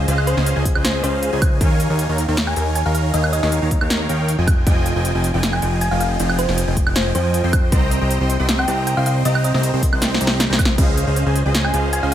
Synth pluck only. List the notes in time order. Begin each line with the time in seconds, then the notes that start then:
0.27 C5
0.84 C5
1.04 C5
2.47 G#5
2.76 G#5
2.86 F5
2.95 F5
3.14 D#5
3.33 D#5
3.43 D#5
5.53 G#5
5.81 G#5
5.91 F5
6.01 F5
6.39 C5
6.96 C5
7.15 C5
8.59 G5
8.87 G5
8.97 F5
9.06 F5
9.25 D#5
9.45 D#5
9.55 D#5
11.65 G#5
11.93 G#5
12.03 F5